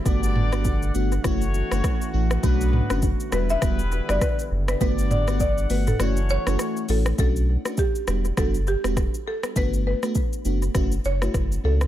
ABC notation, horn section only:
X:1
M:4/4
L:1/8
Q:"Swing 16ths" 1/4=101
K:Bm
V:1 name="Horn section"
[B,DGd]3 z [A,CFc]3 z | [F,B,DB]2 z [G,B,EB]4 z | [B,DGd]3 z [A,CFc]3 z | z8 |
z8 |]